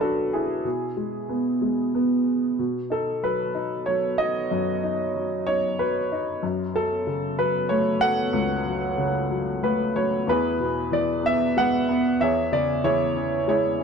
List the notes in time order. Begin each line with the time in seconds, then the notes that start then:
Already playing: B2 F#3 F#4 B4
0.00 D4 F#4 A4
0.33 E4 G#4
0.65 B2
0.97 G#3
1.29 B3
1.62 G#3
1.95 B3
2.59 B2
2.90 D#4 A4
3.23 F#3 B4
3.55 D#4
3.86 F#3 C#5
4.18 D#4 F#4 D#5
4.51 F#2
4.83 D#4
5.16 F#3
5.47 D#4 C#5
5.79 F#3 B4
6.12 D#4
6.43 F#2
6.74 F#3 A4
7.07 C#3
7.39 F#3 B4
7.69 A3 C#5
8.01 F#3 A4 F#5
8.33 C#2
8.66 F#3
8.98 C#3
9.30 F#3
9.63 A3 B4
9.95 F#3 C#5
10.27 E2 E4 B4
10.32 G#4
10.60 B2
10.91 E3 D5
11.23 B3 E5
11.57 G#3 B4 F#5
11.89 B3
12.20 E2 G#4 C#5 E5
12.52 C#3 D5
12.84 E3 E4 G#4 C#5
13.16 C#4
13.47 G#3 E4 G#4 C#5
13.80 C#4